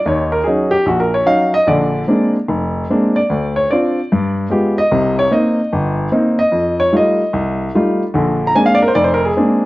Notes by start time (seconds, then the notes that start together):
0.06 D#2 D#3 C#5
0.32 A#4
0.44 F#3 C#4 D#4 G#4
0.71 G4
0.86 A#1 F#4
1.00 A#4
1.14 C#5
1.26 F#3 C#4 D#4 F5
1.54 D#5
1.67 A#1 D3 D5
2.07 G#3 A#3 C4 D4
2.48 F1
2.90 G#3 A#3 C4 D4
3.16 D5
3.30 D2
3.56 C#5
3.71 C4 D4 F4 D5
4.12 G2
4.50 G#3 B3 F4 G4
4.78 D#5
4.91 C2 C3
5.19 C#5
5.31 A#3 C4 D#4 D#5
5.72 G1
6.12 A#3 C4 D#4
6.39 D#5
6.52 F2
6.80 C#5
6.93 G3 A3 D#4 F4
6.97 D#5
7.33 C2
7.75 G3 A3 D#4 F4
8.14 A#1 D3
8.47 A#5
8.55 G#3 A#3 C4 D4 G#5
8.66 F5
8.75 D5
8.82 A#4
8.88 C5
8.95 F1 D5
9.04 C5
9.14 A#4
9.25 G#4
9.37 G#3 A#3 C4 D4